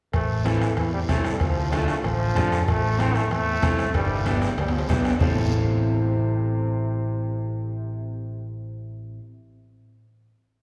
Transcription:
0.13 A1 A3, bombo low, bombo rim, cowbell, high conga, long guiro
0.45 E3 C4 E4 A4, bombo rim, cowbell, high conga, short guiro
0.62 bombo rim, short guiro
0.77 E2 E3, bombo rim, cowbell, high conga, long guiro
0.93 G3
1.09 C2 A3 C4 E4 A4, bombo low, bombo rim, cowbell, high conga, short guiro
1.25 bombo rim, short guiro
1.34 G3
1.40 D2 F3, bombo low, bombo rim, cowbell, high conga, long guiro
1.72 A3 D4 F4 A4, bombo rim, cowbell, high conga, short guiro
1.88 A3, bombo rim, low conga, short guiro
2.04 A1 F3, bombo rim, cowbell, high conga, long guiro
2.35 F2 D4 F4 A4, bombo low, bombo rim, cowbell, high conga, low conga, low timbale, short guiro
2.52 bombo rim, short guiro
2.68 A1 A3, bombo low, bombo rim, cowbell, high conga, long guiro
2.98 C4 E4 A4, bombo rim, cowbell, high conga, short guiro
3.15 A3, bombo rim, short guiro
3.31 E2 A3, bombo rim, cowbell, high conga, long guiro
3.62 C2 C4 E4 A4, bombo low, bombo rim, cowbell, high conga, short guiro
3.78 bombo rim, short guiro
3.94 G1 G3, bombo low, bombo rim, cowbell, high conga, high timbale, long guiro
4.05 high timbale
4.16 high timbale
4.25 B3 D4 G4, bombo rim, cowbell, high conga, short guiro
4.37 low timbale
4.42 bombo rim, low conga, short guiro
4.47 low timbale
4.57 D2 G3, bombo rim, cowbell, high conga, low timbale, long guiro
4.68 low timbale
4.74 F3
4.79 low timbale
4.89 B1 E3 B3 D4 G4, bombo low, bombo rim, cowbell, high conga, low conga, low timbale, short guiro
5.00 low timbale
5.05 D3, bombo rim, short guiro
5.10 low timbale
5.18 A1 C3 C4 E4 A4, bombo low, low conga, low timbale, long guiro

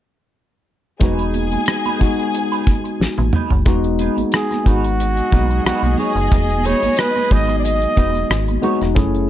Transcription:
1.00 E1 G#3 B3 D#4 F#4 G#4 B4 G#5, kick, closed hi-hat, muted conga, low conga
1.19 closed hi-hat
1.34 closed hi-hat, muted conga, high conga
1.52 muted clean electric guitar stroke, closed hi-hat, high conga
1.66 muted clean electric guitar stroke, cross-stick, closed hi-hat, muted conga
1.85 B3 D#4 G#4 B4, closed hi-hat, high conga
1.99 G#3 B3 D#4 F#4, kick, open hi-hat, low conga
2.19 muted clean electric guitar stroke, closed hi-hat
2.34 muted clean electric guitar stroke, closed hi-hat
2.52 B3 D#4 G#4 B4, closed hi-hat
2.66 muted clean electric guitar stroke, kick, closed hi-hat, high conga
2.84 muted clean electric guitar stroke, closed hi-hat
3.00 A1, muted clean electric guitar stroke, snare
3.18 A1, muted clean electric guitar stroke, high tom, high conga
3.33 B3 D#4 G#4 B4, mid tom, high conga, low conga
3.50 F#1, muted clean electric guitar stroke, floor tom
3.65 E1 G#3 B3 D#4 F#4, kick, closed hi-hat, low conga
3.84 closed hi-hat
3.99 B3 D#4 G#4 B4, closed hi-hat, high conga
4.17 G#1, closed hi-hat, high conga
4.32 G#4, cross-stick, closed hi-hat, muted conga
4.51 muted clean electric guitar stroke, cross-stick, closed hi-hat, high conga
4.64 G#1 G#3 B3 D#4 F#4 G#4 B4, kick, closed hi-hat, low conga
4.68 F#4
4.84 muted clean electric guitar stroke, closed hi-hat
4.99 B3 G#4 D#5, muted clean electric guitar stroke, closed hi-hat
5.17 closed hi-hat
5.31 B1 F#3 B3 D#4 F#4 G#4 B4, kick, closed hi-hat, muted conga, high conga
5.38 G#3
5.50 muted clean electric guitar stroke, closed hi-hat
5.65 B1 B3 D#4 F#4 G#4 B4, cross-stick, closed hi-hat, muted conga
5.83 B1, muted clean electric guitar stroke, closed hi-hat, high conga
5.98 B3 D#4 G#4 C#5, open hi-hat, high conga, low conga
6.16 F#1, muted clean electric guitar stroke, closed hi-hat
6.31 E1, kick, closed hi-hat, low conga
6.50 closed hi-hat
6.65 B3 D#4 G#4 B4 C#5, closed hi-hat, muted conga, high conga
6.82 G#1, closed hi-hat, high conga
6.97 B4, cross-stick, closed hi-hat, muted conga
7.16 muted clean electric guitar stroke, cross-stick, closed hi-hat, high conga
7.30 G#1 G#3 B3 D#4 F#4 G#4 B4 D#5, kick, open hi-hat, muted conga, low conga
7.49 muted clean electric guitar stroke, closed hi-hat
7.59 D5
7.64 D#5, muted clean electric guitar stroke, closed hi-hat, muted conga
7.82 closed hi-hat
7.96 E1 G#3 B3 D#4 F#4 G#4 B4, kick, closed hi-hat, muted conga, high conga
8.14 muted clean electric guitar stroke, closed hi-hat
8.30 G#1, muted clean electric guitar stroke, cross-stick, closed hi-hat
8.48 muted clean electric guitar stroke, closed hi-hat, high conga
8.62 G#3 B3 D#4 F#4 G#4 C#5, closed hi-hat, muted conga, high conga, low conga
8.81 E1, muted clean electric guitar stroke, cross-stick, closed hi-hat
8.95 F#1 A3 C#4 E4 G#4, kick, closed hi-hat, low conga
9.15 closed hi-hat

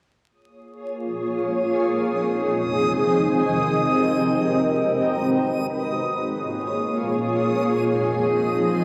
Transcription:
0.28 D#6

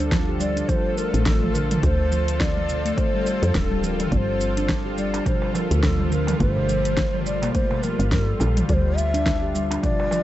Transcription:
Already playing: D2 D3 F4 A4 C5
0.00 D4
0.12 F3, kick, snare, closed hi-hat, shaker
0.27 A3 G4
0.40 G3 D5, shaker
0.44 C4
0.56 D4, closed hi-hat, shaker
0.68 F3 C5, kick, closed hi-hat, shaker
0.98 A#4, shaker
1.14 A1 A3, closed hi-hat, shaker
1.25 F3 A4, kick, snare, closed hi-hat, shaker
1.43 mid tom
1.54 D3 A#4, shaker
1.71 D3, closed hi-hat, mid tom, shaker
1.83 D2 A3 C5, kick, closed hi-hat, shaker
2.11 F3, shaker
2.28 closed hi-hat, shaker
2.40 D5, kick, snare, closed hi-hat, shaker
2.57 mid tom
2.69 shaker
2.85 A3, closed hi-hat, shaker
2.97 A3 C5, kick, closed hi-hat, shaker
3.14 G3
3.26 G3, shaker
3.43 F2, closed hi-hat, shaker
3.54 D1 D4 A#4, kick, snare, closed hi-hat, shaker
3.59 A4
3.71 G3
3.83 F3 C5, shaker
3.88 A#4
4.00 F3, closed hi-hat, mid tom, shaker
4.12 G1 G3 D5, kick, closed hi-hat, shaker
4.17 C5
4.41 shaker
4.57 D4, closed hi-hat, shaker
4.69 kick, snare, closed hi-hat, shaker
4.86 G3 G4
4.98 G3 D5, shaker
5.14 D4, closed hi-hat, darbuka ka, darbuka tek, shaker
5.26 F3 C5, kick, closed hi-hat, darbuka dum, shaker
5.42 darbuka tek
5.54 F3 C5, darbuka ka, darbuka tek, shaker
5.58 A#4
5.71 D2 A3, closed hi-hat, shaker
5.83 F3 A4, kick, snare, closed hi-hat, darbuka dum, shaker
6.00 mid tom
6.12 D3 A#4, shaker
6.27 D3, closed hi-hat, mid tom, darbuka tek, shaker
6.40 G1 A3 C5, kick, closed hi-hat, shaker
6.56 darbuka dum
6.69 F3, shaker
6.85 closed hi-hat, shaker
6.97 kick, snare, closed hi-hat, shaker
7.14 mid tom
7.26 D5, shaker
7.42 A#3, closed hi-hat, darbuka ka, darbuka tek, darbuka dum, shaker
7.54 A3 C5, kick, closed hi-hat, shaker
7.71 G3, darbuka tek, darbuka dum
7.82 F3 A#4, darbuka tek, shaker
7.99 G1, closed hi-hat, shaker
8.11 G2 G3 A#4, kick, snare, closed hi-hat, shaker
8.22 A4
8.40 A#1, darbuka tek, shaker
8.57 closed hi-hat, mid tom, shaker
8.69 D2 D3 G3 D5, kick, closed hi-hat, shaker
8.74 C5
8.97 E5, shaker
9.10 F3
9.14 D4, closed hi-hat, shaker
9.26 kick, snare, closed hi-hat, shaker
9.43 G4
9.55 G3, shaker
9.71 D4, closed hi-hat, darbuka ka, darbuka tek, shaker
9.81 F3 C4 D5, kick, closed hi-hat, darbuka dum, shaker
10.00 darbuka tek
10.11 F3, darbuka ka, darbuka tek, shaker

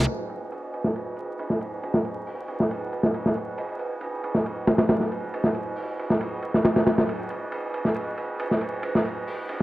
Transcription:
0.08 ride
0.18 ride
0.30 ride
0.52 ride
0.74 ride
0.84 snare
0.96 ride
1.16 ride
1.39 ride
1.50 snare
1.61 ride
1.83 ride
1.94 snare
2.05 ride
2.27 open hi-hat
2.48 ride
2.60 snare
2.71 ride
2.93 ride
3.03 snare
3.14 ride
3.26 snare
3.35 ride
3.58 ride
3.69 ride
3.79 ride
4.01 ride
4.24 ride
4.35 snare
4.46 ride
4.67 snare, ride
4.78 snare, ride
4.89 snare, ride
5.00 snare
5.12 ride
5.34 ride
5.44 snare
5.55 ride
5.76 open hi-hat
5.99 ride
6.10 snare
6.21 ride
6.42 ride
6.54 snare
6.65 snare, ride
6.76 snare, ride
6.86 snare, ride
6.98 snare, ride
7.09 ride
7.20 ride
7.30 ride
7.52 ride
7.74 ride
7.85 snare
7.95 ride
8.17 ride
8.39 ride
8.51 snare
8.61 ride
8.83 ride
8.95 snare
9.05 ride
9.28 open hi-hat
9.49 ride

